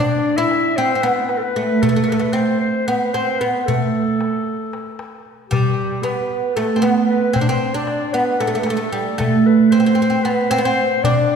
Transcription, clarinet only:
0.00 0.38 D5 medium
0.37 0.78 E5 medium
0.77 1.04 C5 medium
1.03 1.29 B4 medium
1.29 1.39 B4 medium
1.37 1.44 A4 medium
1.43 1.83 B4 medium
1.82 2.11 A4 medium
2.09 2.15 B4 medium
2.14 2.22 A4 medium
2.21 2.35 B4 medium
2.33 2.60 C5 medium
2.61 2.88 C5 medium
2.87 3.15 B4 medium
3.14 3.41 C5 medium
3.39 3.65 B4 medium
3.66 4.94 A4 medium
5.49 6.05 G4 medium
6.03 6.55 B4 medium
6.55 6.84 A4 medium
6.83 7.07 B4 medium
7.08 7.36 B4 medium
7.35 7.48 C5 medium
7.49 7.77 C5 medium
7.75 8.15 D5 medium
8.13 8.42 B4 medium
8.40 8.59 A4 medium
8.59 8.68 B4 soft
8.66 9.18 A4 medium
9.19 9.48 A4 medium
9.46 9.73 B4 medium
9.72 10.26 C5 medium
10.24 10.52 B4 medium
10.51 10.64 C5 medium
10.64 11.05 C5 medium
11.03 11.36 D5 medium

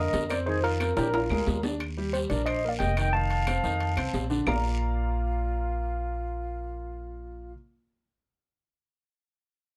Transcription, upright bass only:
0.13 0.91 F2 medium
0.97 1.28 A#1 medium
1.30 1.45 D2 medium
1.47 2.24 D#2 medium
2.30 2.76 A#1 medium
2.80 3.58 F1 medium
3.64 3.94 F2 medium
3.97 4.12 C2 medium
4.13 4.43 A#1 medium
4.46 7.53 A#1 medium

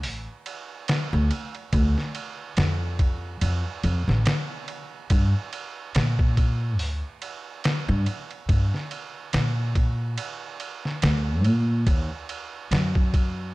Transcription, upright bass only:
0.04 0.25 A1 medium
1.13 1.29 D2 loud
1.73 1.94 D2 loud
2.57 3.39 F2 medium
3.42 3.63 F2 medium
3.84 4.05 F2 medium
4.08 4.24 A1 medium
5.10 5.32 G2 loud
5.96 6.80 A#2 medium
6.80 7.01 D2 medium
7.89 8.05 G2 loud
8.49 8.70 G2 medium
9.33 10.15 A#2 medium
11.03 11.45 D2 medium
11.45 11.83 A#2 medium
11.87 12.08 D#2 loud
12.71 13.54 F#2 medium

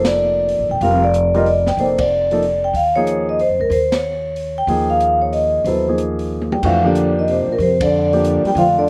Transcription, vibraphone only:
0.07 0.66 D5 medium
0.71 0.76 G5 medium
0.82 1.03 F5 medium
1.04 1.36 D5 medium
1.36 1.47 D#5 medium
1.48 1.66 D5 medium
1.68 1.73 G5 medium
1.80 2.00 C5 medium
2.00 2.66 D5 medium
2.64 2.74 G5 medium
2.76 2.97 F5 medium
2.96 3.25 C#5 medium
3.29 3.34 D#5 medium
3.41 3.59 C5 medium
3.61 3.66 A#4 medium
3.72 3.93 C5 medium
3.93 4.59 C#5 medium
4.58 4.88 G5 medium
4.90 5.20 F5 medium
5.22 5.33 C#5 medium
5.33 5.63 D#5 medium
5.66 5.96 C5 medium
6.52 6.62 G5 medium
6.66 6.84 F5 medium
6.87 7.18 D5 medium
7.19 7.28 D#5 medium
7.31 7.50 C5 medium
7.52 7.56 A#4 medium
7.62 7.82 C5 medium
7.83 8.48 D5 medium
8.48 8.53 G5 medium
8.58 8.67 F5 medium
8.79 8.89 D5 medium

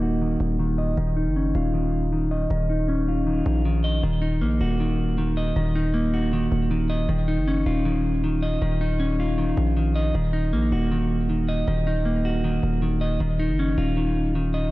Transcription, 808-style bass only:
0.00 0.36 D#1 loud
0.40 0.95 D#1 loud
0.97 1.28 D#1 loud
1.27 1.53 F#1 loud
1.55 2.47 D#1 loud
2.50 3.42 D#1 loud
3.46 4.01 A#1 loud
4.03 4.43 D#1 loud
4.41 4.60 A#1 loud
4.61 5.52 D#1 loud
5.56 6.48 D#1 loud
6.52 7.07 D#1 loud
7.09 7.40 D#1 loud
7.38 7.65 F#1 loud
7.66 8.58 D#1 loud
8.62 9.54 D#1 loud
9.57 10.12 A#1 loud
10.15 10.54 D#1 loud
10.53 10.71 A#1 loud
10.72 11.64 D#1 loud
11.68 12.59 D#1 loud
12.63 13.18 D#1 loud
13.20 13.51 D#1 loud
13.50 13.76 F#1 loud
13.78 14.69 D#1 loud

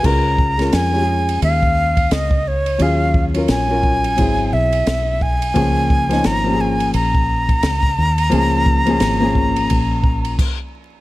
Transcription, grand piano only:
0.00 0.51 G#3 medium
0.00 0.51 C#4 medium
0.00 0.23 F#4 soft
0.00 0.23 B4 medium
0.04 0.52 F4 medium
0.04 0.52 A#4 medium
0.58 0.88 G#3 medium
0.58 0.88 C#4 medium
0.58 0.89 F4 medium
0.58 0.89 A#4 medium
0.92 2.10 G#3 medium
0.92 2.11 C#4 medium
0.92 2.11 F4 medium
0.92 1.00 G4 medium
1.02 2.15 G#4 medium
2.78 3.27 F#3 medium
2.78 3.27 C#4 medium
2.78 3.28 F4 medium
2.78 3.28 G#4 medium
3.34 3.64 F#3 medium
3.34 3.64 C#4 medium
3.34 3.65 F4 medium
3.34 3.65 A#4 medium
3.68 4.15 F#3 medium
3.68 4.18 C#4 medium
3.68 4.18 F4 medium
3.68 4.19 A#4 medium
4.16 5.41 F#3 medium
4.16 5.42 C4 medium
4.16 5.42 E4 medium
4.16 5.43 G#4 medium
5.54 6.02 F3 medium
5.54 6.03 A#3 medium
5.54 6.03 C#4 medium
5.54 6.04 G#4 medium
6.09 6.39 F3 medium
6.09 6.40 A#3 medium
6.09 6.40 C#4 medium
6.09 6.41 D#4 medium
6.44 7.62 F3 medium
6.44 7.62 A#3 medium
6.44 7.63 C#4 medium
6.44 6.52 G4 medium
6.54 7.67 G#4 medium
8.30 8.78 F3 medium
8.30 8.79 A#3 medium
8.30 8.79 C#4 medium
8.30 8.80 G#4 loud
8.85 9.15 F3 medium
8.85 9.16 A#3 medium
8.85 9.17 C#4 medium
8.85 9.17 G#4 medium
9.20 10.38 F3 medium
9.20 10.38 A#3 medium
9.20 10.39 C#4 medium
9.20 10.39 G#4 medium

